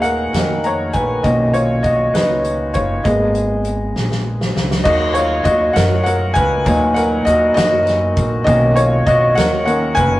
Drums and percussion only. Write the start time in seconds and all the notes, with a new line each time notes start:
0.03 closed hi-hat
0.34 snare, closed hi-hat
0.64 closed hi-hat
0.93 kick, closed hi-hat
1.24 kick, closed hi-hat
1.54 closed hi-hat
1.84 kick, closed hi-hat
2.15 snare, closed hi-hat
2.44 closed hi-hat
2.74 kick, closed hi-hat
3.05 kick, closed hi-hat
3.35 closed hi-hat
3.65 closed hi-hat
3.96 snare
4.11 snare
4.41 snare
4.56 snare
4.71 snare
4.85 kick, crash
5.15 closed hi-hat
5.45 kick, closed hi-hat
5.76 snare, closed hi-hat
6.06 closed hi-hat
6.35 kick, closed hi-hat
6.66 kick, closed hi-hat
6.96 closed hi-hat
7.26 closed hi-hat
7.57 snare, closed hi-hat
7.87 snare, closed hi-hat
8.17 kick, closed hi-hat
8.47 kick, closed hi-hat
8.76 closed hi-hat
9.07 kick, closed hi-hat
9.37 snare, closed hi-hat
9.67 closed hi-hat
9.96 kick, closed hi-hat